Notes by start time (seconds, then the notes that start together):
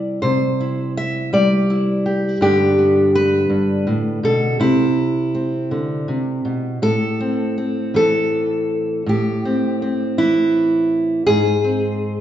Already playing: C3 G3 E4 D5
0.22 C3 C5
0.60 E4
0.97 E5
1.33 G3 D5
1.70 E4
2.06 G4
2.41 G2 D3 B3 D4 G4
2.78 B3
3.15 B4
3.49 G2
3.87 A2
4.23 B2 A4
4.60 C3 E4
5.35 C4
5.71 D3
6.08 C3
6.45 B2
6.82 A2 A4
7.20 C4
7.58 C4
7.94 E3 A4
9.06 A2 G4
9.45 C4
9.82 C4
10.18 E3 E4
11.27 G#2 G#4
11.64 C4